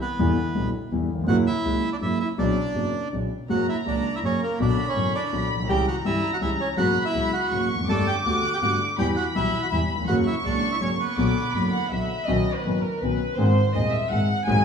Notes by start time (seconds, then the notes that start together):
0.01 B3 B4
0.18 E2 D3 E3 G3 B3 E4
0.55 B1 B2 D3 G3 B3 E4
0.91 E2 D3 E3 G3 B3 E4
1.15 D#2
1.19 E2
1.23 F2 C#3
1.28 F#1 F#2 F#3 A#3 E4 F#4 F#5
1.47 E4 E5
1.65 C#2 C#3 F#3 A#3 E4
1.93 D4 D5
2.01 F#1 F#2 C#3 F#3 A#3 E4 E5
2.20 E4 E5
2.38 B1 B2 C#3 F#3 B3 D4 D5
2.74 F#1 F#2 C#3 F#3 B3 D4
3.12 B1 B2 C#3 F#3 B3 D4
3.49 F#1 F#2 C#3 F#3 A#3 F#4 F#5 A#5
3.69 E4 E5
3.85 C#2 C#3 F#3 A#3 D4 F#4 D5
4.16 E4 E5
4.23 F#1 F#2 C#3 F#3 A#3 C#4 F#4 C#5
4.43 A#3 A#4
4.59 B1 B2 D3 F#3 B3 D4 F#4 D5 B5
4.89 C#4 C#5
4.95 F#1 F#2 D3 F#3 B3 F#4
5.15 D4 D5
5.31 B1 B2 D3 F#3 B3 F#4 B5
5.50 B1
5.55 A#1
5.60 B1
5.64 C2 C#2 A#5
5.69 C#2 C#3 E3 G3 C#4 G4 G5
5.88 F#4 F#5
6.04 G1 G2 E3 G3 C#4 E4 G4 E5
6.34 F#4 F#5
6.41 C#2 C#3 E3 G3 C#4 E4 G4 E5
6.61 C#4 C#5
6.77 F#1 F#2 C#3 F#3 B3 F#4 F#5 B5
7.05 E4 E5
7.13 C#2 C#3 F#3 B3 F#4
7.33 F#4 F#5
7.50 F#1 F#2 C#3 F#3 A#3 F#4 C#6
7.69 F1
7.74 E2
7.80 F2 F#2
7.88 G1 G2 D3 A3 B3 G4 A4 A5 D6
8.07 G4 G5
8.25 D2 D3 A3 B3 F#4 G4 F#5
8.54 G4 G5
8.62 G1 G2 D3 A3 B3 F#4 G4 F#5
8.98 E2 E3 G3 B3 G4 G5 B5
9.16 F#4 F#5
9.35 B1 B2 E3 G3 B3 E4 G4 E5
9.63 F#4 F#5
9.71 E2 E3 G3 B3 E4 G4 E5
9.96 D#2
10.00 E2
10.04 F#1 F2 F#5 C#6
10.09 F#2 C#3 F#3 A#3 F#4
10.27 E4 E5
10.44 C#2 C#3 F#3 A#3 D4 F#4 D5
10.72 E4 E5
10.80 F#1 F#2 C#3 F#3 A#3 C#4 F#4 C#5
11.00 B3 B4
11.17 B1 B2 D3 F#3 B3 F#4 D6
11.54 F#1 F#2 D3 F#3 B3 F#4 B5
11.71 F#5
11.90 B1 B2 D3 F#3 B3 F#4 E5 B5
12.27 B1 B2 D#3 B3 C#4 F#4 D#5
12.55 B4
12.65 F#1 F#2 D#3 B3 C#4 F#4
12.83 A#4
13.01 B1 B2 D#3 B3 C#4 F#4 B4
13.37 G#1 G#2 D#3 G#3 C4 G#4 C5
13.74 D#1 D#2 D#3 G#3 C4 G#4 D#5
13.92 E5
14.10 G#1 G#2 D#3 G#3 C4 G#4 F#5
14.47 G#1 G#2 F#3 G#3 C#4 G#4 G#5